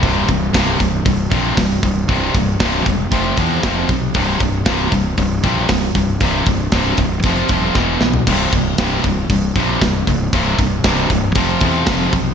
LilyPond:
<<
  \new Staff \with { instrumentName = "Distorted electric guitar" } { \clef bass \time 4/4 \key c \major \tempo 4 = 117 <c, g, c>8 <c, g,>8 <c, g, c>8 <c, g,>8 <c, g,>8 <c, g, c>8 <c, g,>8 <c, g,>8 | <c, g, c>8 <c, g,>8 <c, g, c>8 <c, g,>8 <f, c f>8 <f, c f>8 <f, c f>8 <f, c>8 | <c, g, c>8 <c, g,>8 <c, g, c>8 <c, g,>8 <c, g,>8 <c, g, c>8 <c, g,>8 <c, g,>8 | <c, g, c>8 <c, g,>8 <c, g, c>8 <c, g,>8 <f, c f>8 <f, c f>8 <e, b, e>8 <e, b,>8 |
<c, g, c>8 <c, g,>8 <c, g, c>8 <c, g,>8 <c, g,>8 <c, g, c>8 <c, g,>8 <c, g,>8 | <c, g, c>8 <c, g,>8 <c, g, c>8 <c, g,>8 <f, c f>8 <f, c f>8 <f, c f>8 <f, c>8 | }
  \new Staff \with { instrumentName = "Distorted electric guitar" } { \clef bass \time 4/4 \key c \major <c, g, c>8 <c, g,>8 <c, g, c>8 <c, g,>8 <c, g,>8 <c, g, c>8 <c, g,>8 <c, g,>8 | <c, g, c>8 <c, g,>8 <c, g, c>8 <c, g,>8 <f, c f>8 <f, c f>8 <f, c f>8 <f, c>8 | <c, g, c>8 <c, g,>8 <c, g, c>8 <c, g,>8 <c, g,>8 <c, g, c>8 <c, g,>8 <c, g,>8 | <c, g, c>8 <c, g,>8 <c, g, c>8 <c, g,>8 <f, c f>8 <f, c f>8 <e, b, e>8 <e, b,>8 |
<c, g, c>8 <c, g,>8 <c, g, c>8 <c, g,>8 <c, g,>8 <c, g, c>8 <c, g,>8 <c, g,>8 | <c, g, c>8 <c, g,>8 <c, g, c>8 <c, g,>8 <f, c f>8 <f, c f>8 <f, c f>8 <f, c>8 | }
  \new Staff \with { instrumentName = "Fingered electric bass" } { \clef bass \time 4/4 \key c \major c,,8 c,,8 c,,8 c,,8 c,,8 bes,,8 c,,8 c,,8 | c,,8 c,,8 c,,8 e,,8 f,,8 e,8 f,,8 b,,8 | c,,8 c,,8 c,,8 c,,8 c,,8 bes,,8 c,,8 c,,8 | c,,8 c,,8 c,,8 c,,8 f,,8 ees,,8 e,,8 b,,8 |
c,,8 c,,8 c,,8 c,,8 c,,8 bes,,8 c,,8 c,,8 | c,,8 c,,8 c,,8 c,,8 f,,8 e,8 f,,8 b,,8 | }
  \new DrumStaff \with { instrumentName = "Drums" } \drummode { \time 4/4 <hho bd>8 <hho bd>8 <hho bd sn>8 <hho bd>8 <hho bd>8 <hho bd>8 <hho bd sn>8 <hho bd>8 | <hho bd>8 <hho bd>8 <hho bd sn>8 <hho bd>8 <hho bd>8 <hho bd>8 <hho bd sn>8 <hho bd>8 | <hho bd>8 <hho bd>8 <hho bd sn>8 <hho bd>8 <hho bd>8 <hho bd>8 <hho bd sn>8 <hho bd>8 | <hho bd>8 <hho bd>8 <hho bd sn>8 <hho bd>8 <hho bd>8 <hho bd>8 <bd sn>8 sn16 tomfh16 |
<cymc hho bd>8 <hho bd>8 <hho bd sn>8 <hho bd>8 <hho bd>8 <hho bd>8 <hho bd sn>8 <hho bd>8 | <hho bd>8 <hho bd>8 <hho bd sn>8 <hho bd>8 <hho bd>8 <hho bd>8 <hho bd sn>8 <hho bd>8 | }
>>